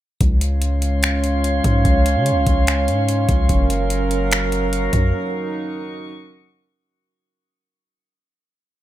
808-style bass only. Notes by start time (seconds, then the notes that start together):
0.21 C#2
1.64 G#2
1.85 C#2
2.16 C#3
2.31 C#2
2.47 C#2
2.88 G#2
3.29 C#2
3.49 F#1
4.93 F#2